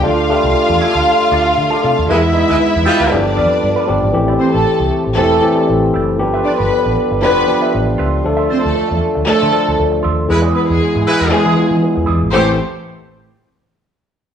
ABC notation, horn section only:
X:1
M:4/4
L:1/16
Q:1/4=117
K:Am
V:1 name="Horn section"
z16 | [^G,EB] z2 [G,EB] z2 [=G,FB]3 z6 z | z16 | z16 |
z16 | [^G,EB] z4 z [G,EB]3 z6 z | [A,Gc]2 z12 z2 |]